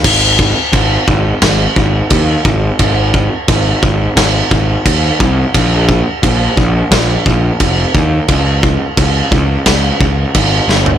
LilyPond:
<<
  \new Staff \with { instrumentName = "Picked electric bass" } { \clef bass \time 4/4 \key aes \dorian \tempo 4 = 87 aes,,4 aes,,8 aes,,8 aes,,8 aes,,8 ees,8 aes,,8 | aes,,4 aes,,8 aes,,8 aes,,8 aes,,8 ees,8 c,8 | bes,,4 bes,,8 bes,,8 bes,,8 bes,,8 f,,8 ees,8 | des,4 des,8 des,8 des,8 des,8 aes,,8 g,,8 | }
  \new DrumStaff \with { instrumentName = "Drums" } \drummode { \time 4/4 <cymc bd>8 bd8 <cymc bd>8 bd8 <cymc bd sn>8 bd8 <cymc bd>8 bd8 | <cymc bd>8 bd8 <cymc bd>8 bd8 <cymc bd sn>8 bd8 <cymc bd>8 bd8 | <cymc bd>8 bd8 <cymc bd>8 bd8 <cymc bd sn>8 bd8 <cymc bd>8 bd8 | <cymc bd>8 bd8 <cymc bd>8 bd8 <cymc bd sn>8 bd8 <cymc bd>8 sn16 tomfh16 | }
>>